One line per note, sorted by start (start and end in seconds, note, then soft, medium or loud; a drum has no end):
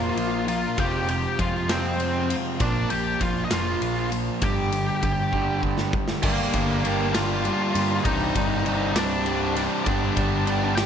0.00 0.10 F1 loud
0.00 0.45 A#2 medium
0.00 0.77 A#2 medium
0.00 0.46 F3 medium
0.00 0.77 F3 medium
0.00 0.46 A#3 medium
0.00 0.48 A#3 medium
0.00 0.47 D4 medium
0.00 0.44 F4 medium
0.00 0.47 F4 medium
0.00 0.46 A#4 loud
0.00 0.45 F5 loud
0.17 0.64 A#1 medium
0.17 ride medium
0.47 0.75 A#2 medium
0.47 0.75 F3 medium
0.47 0.77 A#3 medium
0.47 0.77 D4 medium
0.47 0.79 F4 medium
0.47 0.76 F4 medium
0.47 0.76 A#4 medium
0.47 0.79 F5 medium
0.47 ride medium
0.77 1.25 F1 loud
0.77 1.38 F2 medium
0.77 1.06 F2 medium
0.77 1.06 C3 medium
0.77 1.39 C3 medium
0.77 1.09 F3 medium
0.77 1.07 F3 loud
0.77 1.08 G#3 loud
0.77 1.08 C4 medium
0.77 1.06 F4 loud
0.77 1.07 G4 medium
0.77 1.09 G5 medium
0.77 kick loud
0.77 ride medium
1.08 1.36 F2 medium
1.08 1.36 C3 medium
1.08 1.37 F3 medium
1.08 1.37 G#3 medium
1.08 1.39 C4 medium
1.08 1.39 F4 medium
1.08 1.38 G4 medium
1.08 1.38 G5 medium
1.08 ride medium
1.38 1.66 F2 medium
1.38 2.33 F2 medium
1.38 1.66 C3 medium
1.38 1.69 F3 medium
1.38 1.68 G#3 medium
1.38 1.68 C4 medium
1.38 1.68 F4 medium
1.38 1.67 F4 medium
1.38 1.71 F5 medium
1.38 kick medium
1.38 ride medium
1.68 2.28 F2 medium
1.68 2.59 F2 medium
1.68 2.28 C3 medium
1.68 2.59 C3 medium
1.68 2.28 F3 loud
1.68 2.30 F3 medium
1.68 2.30 G#3 medium
1.68 2.29 C4 medium
1.68 2.34 C4 medium
1.68 2.28 F4 medium
1.68 2.34 C5 medium
1.68 snare loud
1.68 ride loud
2.00 ride medium
2.29 2.57 F2 medium
2.29 2.57 C3 medium
2.29 2.59 F3 medium
2.29 2.59 G#3 medium
2.29 2.58 C4 medium
2.29 2.58 F4 medium
2.29 ride medium
2.59 2.84 A#1 loud
2.59 2.88 A#2 medium
2.59 2.88 F3 medium
2.59 2.89 A#3 loud
2.59 2.89 D4 medium
2.59 2.92 D5 medium
2.59 kick loud
2.59 ride loud
2.90 3.14 A#1 loud
2.90 3.17 A#2 medium
2.90 3.18 F3 medium
2.90 3.19 G4 medium
2.90 3.21 G5 loud
2.90 ride medium
3.20 3.44 A#1 medium
3.20 3.48 A#2 medium
3.20 3.48 F3 medium
3.20 3.43 F4 medium
3.20 3.42 F5 medium
3.20 kick medium
3.20 ride medium
3.44 3.51 D#5 medium
3.50 3.75 F1 loud
3.50 4.09 A#2 medium
3.50 4.10 F3 medium
3.50 4.10 A#3 medium
3.50 4.09 F4 medium
3.50 4.08 F5 medium
3.50 snare loud
3.50 ride loud
3.81 4.28 A#1 medium
3.81 ride medium
4.11 4.39 A#2 medium
4.11 4.39 F3 medium
4.11 ride medium
4.42 4.89 G1 loud
4.42 4.70 G2 medium
4.42 4.71 D3 medium
4.42 4.71 G3 loud
4.42 5.60 G4 medium
4.42 5.60 G5 loud
4.42 kick loud
4.42 ride medium
4.72 5.00 G2 medium
4.72 5.00 D3 medium
4.72 ride medium
5.03 5.96 G2 medium
5.03 5.30 G2 medium
5.03 5.30 D3 medium
5.03 kick medium
5.03 ride medium
5.33 5.91 G2 medium
5.33 5.92 D3 medium
5.33 5.92 G3 loud
5.33 kick medium
5.63 kick medium
5.78 snare medium
5.93 6.21 G2 medium
5.93 6.21 D3 medium
5.93 kick loud
6.08 snare medium
6.22 6.47 G1 loud
6.22 6.83 G2 medium
6.22 6.84 D3 medium
6.22 6.56 G3 medium
6.22 6.54 A#3 medium
6.22 7.11 A#3 medium
6.22 6.54 D4 loud
6.22 6.53 G4 loud
6.22 7.17 A#4 medium
6.22 kick loud
6.22 crash loud
6.53 7.48 G1 medium
6.53 6.82 G2 loud
6.53 6.83 D3 loud
6.53 6.84 G3 medium
6.53 6.84 A#3 medium
6.53 6.86 D4 medium
6.53 6.86 G4 medium
6.53 kick medium
6.53 ride medium
6.84 7.13 G2 medium
6.84 7.14 D3 medium
6.84 7.15 G3 medium
6.84 7.14 A#3 medium
6.84 7.14 D4 medium
6.84 7.14 G4 medium
6.84 ride medium
7.13 8.04 G2 medium
7.13 8.04 D3 medium
7.13 7.77 G3 medium
7.13 7.75 A#3 medium
7.13 7.75 D4 medium
7.13 8.01 F4 medium
7.13 7.74 G4 loud
7.13 8.00 F5 loud
7.13 snare loud
7.13 ride loud
7.44 7.74 G2 medium
7.44 7.74 D3 medium
7.44 7.78 G3 medium
7.44 7.76 G3 medium
7.44 7.76 A#3 medium
7.44 7.76 D4 medium
7.44 7.75 G4 medium
7.44 ride medium
7.74 7.98 G2 medium
7.74 8.03 G2 loud
7.74 8.03 D3 loud
7.74 8.06 G3 medium
7.74 8.04 A#3 medium
7.74 8.07 D4 medium
7.74 8.07 G4 medium
7.74 ride medium
8.04 8.29 C1 loud
8.04 8.65 C2 medium
8.04 8.64 G2 medium
8.04 8.36 C3 medium
8.04 8.36 G3 loud
8.04 8.34 D4 loud
8.04 8.92 D#4 medium
8.04 8.96 D#5 medium
8.04 kick loud
8.04 ride loud
8.35 8.95 G1 medium
8.35 8.64 C2 loud
8.35 8.65 G2 loud
8.35 8.65 C3 medium
8.35 8.67 G3 medium
8.35 8.67 D4 medium
8.35 kick medium
8.35 ride medium
8.65 8.95 C2 medium
8.65 8.96 G2 medium
8.65 8.96 C3 medium
8.65 8.95 G3 medium
8.65 8.94 D4 medium
8.65 ride medium
8.95 9.66 C1 loud
8.95 9.85 C2 medium
8.95 9.84 G2 medium
8.95 9.57 C3 medium
8.95 9.56 G3 medium
8.95 9.54 D4 medium
8.95 9.61 D4 medium
8.95 9.60 D5 loud
8.95 snare loud
8.95 ride loud
9.25 9.54 C2 medium
9.25 9.84 G2 medium
9.25 9.55 G2 medium
9.25 9.57 C3 medium
9.25 9.56 C3 medium
9.25 9.56 G3 medium
9.25 9.55 D4 medium
9.25 ride medium
9.55 9.84 C2 medium
9.55 9.85 G2 medium
9.55 9.86 C3 medium
9.55 9.85 G3 medium
9.55 9.84 D4 medium
9.55 ride medium
9.84 10.10 G1 loud
9.84 10.46 G2 loud
9.84 10.47 D3 medium
9.84 10.18 G3 loud
9.84 10.17 B3 loud
9.84 10.73 D4 medium
9.84 10.16 D4 loud
9.84 10.15 G4 loud
9.84 10.72 D5 medium
9.84 kick loud
9.84 ride loud
10.16 10.86 G1 medium
10.16 10.46 G2 loud
10.16 10.46 D3 loud
10.16 10.46 G3 medium
10.16 10.47 B3 medium
10.16 10.48 D4 medium
10.16 10.48 G4 medium
10.16 kick medium
10.16 ride medium
10.47 10.76 G2 medium
10.47 10.76 D3 medium
10.47 10.77 G3 medium
10.47 10.77 B3 medium
10.47 10.76 D4 medium
10.47 10.76 G4 medium
10.47 ride medium
10.75 10.86 D3 medium
10.75 10.86 G3 medium
10.75 10.86 B3 medium
10.75 10.86 D4 medium
10.75 10.86 G4 medium
10.75 10.86 G5 loud
10.75 snare loud
10.75 ride loud
10.79 10.86 G2 medium